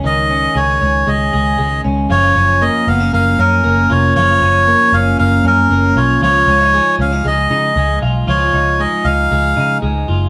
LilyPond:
<<
  \new Staff \with { instrumentName = "Melodica" } { \time 4/4 \key fis \major \tempo 4 = 117 dis''4 cis''4 dis''4. r8 | cis''4 dis''8 eis''8 eis''8 ais'4 cis''8 | cis''4. eis''8 eis''8 ais'4 cis''8 | cis''4. eis''8 dis''4. r8 |
cis''4 dis''8 eis''4. r4 | }
  \new Staff \with { instrumentName = "Clean electric guitar" } { \time 4/4 \key fis \major <dis gis cis' gis'>8 cis'8 gis'8 cis'8 gis8 gis'8 gis8 cis'8 | <eis eis'>8 cis'8 ais8 b16 cis'16 ais8 cis'8 ais8 eis'8 | <eis eis'>8 cis'8 ais8 cis'8 ais8 cis'8 ais8 eis'8 | <eis eis'>8 cis'16 dis'16 gis8 cis'16 dis'16 gis8 dis'8 gis8 eis'8 |
<eis eis'>8 dis'8 gis8 dis'8 gis8 dis'8 gis8 eis'8 | }
  \new Staff \with { instrumentName = "Picked electric bass" } { \clef bass \time 4/4 \key fis \major cis,4 cis,8 cis,8 cis,8 cis,8 cis,8 cis,8 | fis,,8 fis,,8. r16 fis,,8 fis,,8 fis,8 fis,,8 eis,,8 | fis,,8 fis,,8. r16 fis,,8 fis,,8 fis,8 fis,,8 b,,8 | cis,8 cis,8. r16 cis,8 cis,8 cis8 cis,8 b,,8 |
cis,8 cis,8. r16 cis,8 cis,8 cis8 cis,8 fis,,8 | }
>>